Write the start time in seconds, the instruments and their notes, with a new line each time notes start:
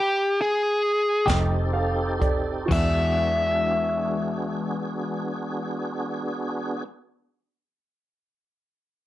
0.00 overdriven electric guitar G4
0.42 overdriven electric guitar G#4
1.26 fingered electric bass F1, clean electric guitar F3 A3 D#4 G4, tonewheel organ C4 D#4 G4 A4, upright piano G4 A4 D#5, kick, snare, closed hi-hat
1.72 upright piano G4 A4 F5
2.19 upright piano G4 A4 D5, kick, closed hi-hat
2.65 clean electric guitar E3, upright piano F#4 G#4
2.71 fingered electric bass E2, clean electric guitar G#3 D4, tonewheel organ B3 D4 F#4 G#4, upright piano D5, overdriven electric guitar E5, kick, crash
2.76 clean electric guitar F#4